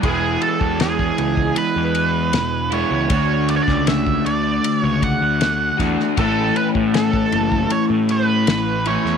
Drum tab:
RD |x-x-x-x-x-x-x-x-|x-x-x-x-x-x-x-x-|x-x-x-x-x-x-x-x-|
SD |----o-------o---|---oo-------o-oo|----o-------o--o|
BD |o--o-o-o--------|o--o-o----o---o-|o--o-o-o--------|